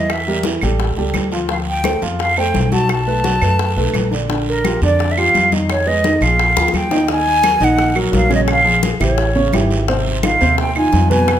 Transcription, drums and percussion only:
0.09 high bongo medium
0.09 high conga soft
0.09 long guiro medium
0.09 claves medium
0.26 high conga soft
0.43 high bongo medium
0.43 high conga medium
0.43 short guiro medium
0.61 high bongo soft
0.61 high conga soft
0.61 short guiro medium
0.61 claves medium
0.79 high bongo medium
0.79 high conga soft
0.79 long guiro medium
0.96 high bongo soft
0.96 high conga soft
1.14 high bongo soft
1.14 low bongo medium
1.14 high conga medium
1.14 short guiro medium
1.14 claves medium
1.31 high bongo soft
1.31 high conga soft
1.31 short guiro medium
1.49 high bongo medium
1.49 high conga soft
1.49 long guiro medium
1.67 high conga soft
1.84 high bongo medium
1.84 high conga medium
1.84 short guiro medium
1.84 claves medium
2.02 high bongo soft
2.02 high conga soft
2.02 short guiro medium
2.19 high bongo medium
2.19 high conga soft
2.19 long guiro medium
2.37 high bongo soft
2.37 high conga soft
2.37 claves medium
2.54 high bongo soft
2.54 low bongo medium
2.54 high conga medium
2.54 short guiro medium
2.72 high bongo soft
2.72 high conga medium
2.72 short guiro medium
2.89 high bongo medium
2.89 high conga soft
2.89 long guiro medium
2.89 claves medium
3.08 high conga soft
3.24 high bongo medium
3.24 high conga medium
3.24 short guiro medium
3.42 high bongo soft
3.42 high conga soft
3.42 short guiro medium
3.42 claves medium
3.59 high bongo medium
3.59 high conga soft
3.59 long guiro medium
3.76 high bongo soft
3.76 high conga soft
3.94 high bongo soft
3.94 low bongo medium
3.94 high conga medium
3.94 short guiro medium
3.94 claves medium
4.12 high bongo soft
4.12 high conga soft
4.12 short guiro medium
4.29 high bongo medium
4.29 high conga soft
4.29 long guiro medium
4.47 high conga soft
4.64 high bongo medium
4.64 high conga medium
4.64 short guiro medium
4.64 claves medium
4.82 high bongo soft
4.82 high conga soft
4.82 short guiro medium
4.99 high bongo medium
4.99 high conga soft
4.99 long guiro medium
5.17 high bongo soft
5.17 high conga soft
5.17 claves medium
5.34 high bongo soft
5.34 low bongo medium
5.34 high conga medium
5.34 short guiro medium
5.52 high bongo soft
5.52 high conga medium
5.52 short guiro medium
5.70 high bongo medium
5.70 high conga soft
5.70 long guiro medium
5.70 claves medium
5.87 high conga soft
6.04 high bongo medium
6.04 high conga medium
6.04 short guiro medium
6.22 high bongo soft
6.22 high conga soft
6.22 short guiro medium
6.22 claves medium
6.39 high bongo medium
6.39 high conga soft
6.39 long guiro medium
6.57 high bongo medium
6.57 high conga soft
6.68 high bongo medium
6.74 high conga medium
6.74 short guiro medium
6.74 claves medium
6.91 low bongo loud
6.91 high conga soft
6.91 short guiro medium
7.08 high bongo medium
7.08 high conga soft
7.08 long guiro medium
7.26 high conga soft
7.43 high bongo medium
7.43 high conga medium
7.43 short guiro medium
7.43 claves medium
7.61 high bongo soft
7.61 high conga soft
7.61 short guiro medium
7.78 high bongo medium
7.78 high conga soft
7.78 long guiro medium
7.95 high bongo soft
7.95 high conga soft
7.95 claves medium
8.13 high bongo soft
8.13 low bongo medium
8.13 high conga medium
8.13 short guiro medium
8.31 high bongo soft
8.31 high conga medium
8.31 short guiro medium
8.48 high bongo medium
8.48 high conga soft
8.48 long guiro medium
8.48 claves medium
8.66 high conga soft
8.83 high bongo medium
8.83 high conga medium
8.83 short guiro medium
9.00 high bongo soft
9.00 high conga soft
9.00 low conga medium
9.00 short guiro medium
9.00 claves medium
9.18 high bongo medium
9.18 high conga soft
9.18 long guiro medium
9.36 high bongo soft
9.36 high conga soft
9.53 high bongo soft
9.53 low bongo medium
9.53 high conga medium
9.53 short guiro medium
9.53 claves medium
9.70 high bongo soft
9.70 high conga soft
9.70 short guiro medium
9.88 high bongo medium
9.88 high conga soft
9.88 long guiro medium
10.06 high conga soft
10.23 high bongo medium
10.23 high conga medium
10.23 short guiro medium
10.23 claves medium
10.41 high bongo soft
10.41 high conga soft
10.41 short guiro medium
10.58 high bongo medium
10.58 high conga soft
10.58 long guiro medium
10.76 high bongo soft
10.76 high conga soft
10.76 claves medium
10.93 high bongo soft
10.93 low bongo medium
10.93 high conga medium
10.93 short guiro medium
11.11 high bongo soft
11.11 high conga medium
11.11 short guiro medium
11.28 high bongo medium
11.28 high conga soft
11.28 long guiro medium
11.28 claves medium

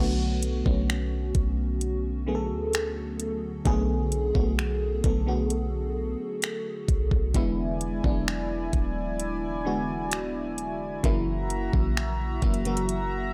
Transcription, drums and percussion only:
0.43 closed hi-hat medium
0.66 kick loud
0.90 finger snap loud
1.35 kick medium
1.35 closed hi-hat medium
1.81 closed hi-hat medium
2.73 finger snap loud
2.73 closed hi-hat medium
3.20 closed hi-hat medium
3.65 kick loud
3.65 closed hi-hat medium
4.12 closed hi-hat medium
4.35 kick medium
4.59 finger snap medium
5.04 kick medium
5.04 closed hi-hat medium
5.50 closed hi-hat medium
6.42 finger snap loud
6.42 closed hi-hat medium
6.88 kick loud
6.88 closed hi-hat medium
7.11 kick medium
7.34 kick loud
7.34 closed hi-hat medium
7.81 closed hi-hat medium
8.04 kick medium
8.28 finger snap loud
8.73 kick medium
8.73 closed hi-hat medium
9.20 closed hi-hat medium
10.12 finger snap loud
10.12 closed hi-hat medium
10.58 closed hi-hat medium
11.04 kick loud
11.04 closed hi-hat medium
11.50 closed hi-hat medium
11.73 kick loud
11.97 finger snap loud
12.42 kick medium
12.42 closed hi-hat soft
12.54 closed hi-hat soft
12.65 closed hi-hat medium
12.77 closed hi-hat medium
12.89 closed hi-hat medium

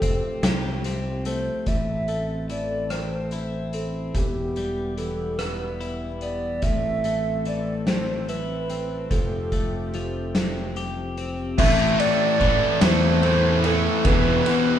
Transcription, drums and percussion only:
0.02 kick medium
0.02 closed hi-hat medium
0.43 snare loud
0.43 closed hi-hat medium
0.84 closed hi-hat medium
1.25 closed hi-hat medium
1.66 kick medium
1.66 closed hi-hat medium
2.08 closed hi-hat soft
2.50 closed hi-hat soft
2.90 cross-stick medium
2.90 closed hi-hat medium
3.31 closed hi-hat medium
3.73 closed hi-hat medium
4.15 kick loud
4.15 closed hi-hat medium
4.56 closed hi-hat medium
4.98 closed hi-hat soft
5.39 cross-stick loud
5.39 closed hi-hat medium
5.81 closed hi-hat soft
6.21 closed hi-hat soft
6.62 kick loud
6.62 closed hi-hat medium
7.04 closed hi-hat soft
7.45 closed hi-hat soft
7.87 snare medium
7.87 closed hi-hat medium
8.29 closed hi-hat soft
8.70 closed hi-hat medium
9.11 kick loud
9.11 closed hi-hat medium
9.52 kick medium
9.52 closed hi-hat medium
9.94 closed hi-hat soft
10.35 snare loud
10.35 closed hi-hat medium
10.76 closed hi-hat soft
11.17 closed hi-hat soft
11.58 kick loud
11.58 crash loud
12.00 ride medium
12.41 kick medium
12.41 ride medium
12.81 snare loud
12.81 ride loud
13.23 ride medium
13.64 ride medium
14.05 kick loud
14.05 ride loud
14.46 ride medium

